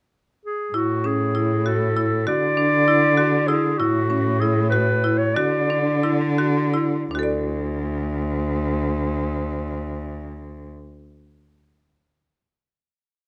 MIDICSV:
0, 0, Header, 1, 4, 480
1, 0, Start_track
1, 0, Tempo, 610376
1, 580, Time_signature, 5, 3, 24, 8
1, 3221, Tempo, 632911
1, 4181, Tempo, 671141
1, 4661, Tempo, 728155
1, 5621, Tempo, 762389
1, 9266, End_track
2, 0, Start_track
2, 0, Title_t, "Clarinet"
2, 0, Program_c, 0, 71
2, 357, Note_on_c, 0, 68, 69
2, 598, Note_on_c, 0, 66, 75
2, 610, Note_off_c, 0, 68, 0
2, 834, Note_on_c, 0, 68, 77
2, 846, Note_off_c, 0, 66, 0
2, 1310, Note_on_c, 0, 69, 76
2, 1322, Note_off_c, 0, 68, 0
2, 1785, Note_off_c, 0, 69, 0
2, 1792, Note_on_c, 0, 74, 98
2, 2732, Note_on_c, 0, 68, 74
2, 2744, Note_off_c, 0, 74, 0
2, 2975, Note_on_c, 0, 66, 84
2, 2986, Note_off_c, 0, 68, 0
2, 3453, Note_on_c, 0, 68, 71
2, 3464, Note_off_c, 0, 66, 0
2, 3671, Note_off_c, 0, 68, 0
2, 3676, Note_on_c, 0, 71, 76
2, 4043, Note_on_c, 0, 73, 76
2, 4055, Note_off_c, 0, 71, 0
2, 4166, Note_on_c, 0, 74, 77
2, 4178, Note_off_c, 0, 73, 0
2, 4886, Note_off_c, 0, 74, 0
2, 9266, End_track
3, 0, Start_track
3, 0, Title_t, "Marimba"
3, 0, Program_c, 1, 12
3, 582, Note_on_c, 1, 64, 64
3, 727, Note_off_c, 1, 64, 0
3, 820, Note_on_c, 1, 61, 55
3, 965, Note_off_c, 1, 61, 0
3, 1061, Note_on_c, 1, 64, 59
3, 1206, Note_off_c, 1, 64, 0
3, 1304, Note_on_c, 1, 66, 61
3, 1448, Note_off_c, 1, 66, 0
3, 1545, Note_on_c, 1, 64, 59
3, 1689, Note_off_c, 1, 64, 0
3, 1784, Note_on_c, 1, 66, 67
3, 1928, Note_off_c, 1, 66, 0
3, 2023, Note_on_c, 1, 62, 61
3, 2167, Note_off_c, 1, 62, 0
3, 2264, Note_on_c, 1, 64, 59
3, 2408, Note_off_c, 1, 64, 0
3, 2496, Note_on_c, 1, 66, 62
3, 2643, Note_off_c, 1, 66, 0
3, 2740, Note_on_c, 1, 64, 61
3, 2885, Note_off_c, 1, 64, 0
3, 2987, Note_on_c, 1, 64, 70
3, 3131, Note_off_c, 1, 64, 0
3, 3223, Note_on_c, 1, 61, 59
3, 3365, Note_off_c, 1, 61, 0
3, 3464, Note_on_c, 1, 64, 54
3, 3606, Note_off_c, 1, 64, 0
3, 3696, Note_on_c, 1, 66, 63
3, 3841, Note_off_c, 1, 66, 0
3, 3936, Note_on_c, 1, 64, 62
3, 4085, Note_off_c, 1, 64, 0
3, 4183, Note_on_c, 1, 66, 68
3, 4326, Note_off_c, 1, 66, 0
3, 4424, Note_on_c, 1, 62, 62
3, 4569, Note_off_c, 1, 62, 0
3, 4662, Note_on_c, 1, 64, 56
3, 4802, Note_off_c, 1, 64, 0
3, 4892, Note_on_c, 1, 66, 61
3, 5037, Note_off_c, 1, 66, 0
3, 5124, Note_on_c, 1, 64, 60
3, 5274, Note_off_c, 1, 64, 0
3, 5371, Note_on_c, 1, 62, 49
3, 5397, Note_on_c, 1, 66, 55
3, 5423, Note_on_c, 1, 69, 47
3, 5451, Note_on_c, 1, 74, 51
3, 7637, Note_off_c, 1, 62, 0
3, 7662, Note_off_c, 1, 66, 0
3, 7687, Note_off_c, 1, 69, 0
3, 7713, Note_off_c, 1, 74, 0
3, 9266, End_track
4, 0, Start_track
4, 0, Title_t, "Cello"
4, 0, Program_c, 2, 42
4, 575, Note_on_c, 2, 45, 64
4, 1781, Note_on_c, 2, 50, 75
4, 1793, Note_off_c, 2, 45, 0
4, 2986, Note_on_c, 2, 45, 75
4, 2998, Note_off_c, 2, 50, 0
4, 4182, Note_on_c, 2, 50, 72
4, 4192, Note_off_c, 2, 45, 0
4, 5352, Note_off_c, 2, 50, 0
4, 5373, Note_on_c, 2, 38, 81
4, 7639, Note_off_c, 2, 38, 0
4, 9266, End_track
0, 0, End_of_file